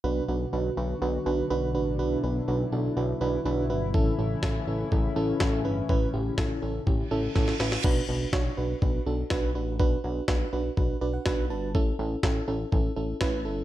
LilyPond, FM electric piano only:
\new Staff \with { instrumentName = "FM electric piano" } { \time 4/4 \key b \minor \tempo 4 = 123 << { r1 | r1 | r1 | r1 |
r1 | r2 r8 d''16 fis''16 fis''8 a''8 | r1 | } \\ { <d' fis' b'>8 <d' fis' b'>8 <d' fis' b'>8 <d' fis' b'>8 <d' fis' b'>8 <d' fis' b'>8 <d' fis' b'>8 <d' fis' b'>8 | <d' fis' b'>8 <d' fis' b'>8 <d' fis' b'>8 <d' fis' a'>8 <d' fis' b'>8 <d' fis' b'>8 <d' fis' b'>8 <d' fis' b'>8 | <cis' e' a'>8 <cis' e' a'>8 <cis' e' a'>8 <cis' e' a'>8 <cis' e' a'>8 <cis' e' a'>8 <cis' e' a'>8 <cis' e' b'>8 | <cis' e' b'>8 <cis' e' g'>8 <cis' e' a'>8 <cis' e' a'>8 <cis' e' g'>8 <cis' e' a'>8 <cis' e' a'>8 <cis' e' b'>8 |
<d' fis' b'>8 <d' fis' b'>8 <d' fis' cis''>8 <d' fis' b'>8 <d' fis' b'>8 <d' fis' a'>8 <d' fis' b'>8 <d' fis' b'>8 | <d' fis' b'>8 <d' fis' b'>8 <d' fis' b'>8 <d' fis' b'>8 <d' fis' b'>8 <d' fis' b'>8 <d' fis' b'>8 <d' fis' b'>8 | <cis' e' a'>8 <cis' e' a'>8 <cis' e' a'>8 <cis' e' a'>8 <cis' e' a'>8 <cis' e' a'>8 <cis' e' b'>8 <cis' e' a'>8 | } >> }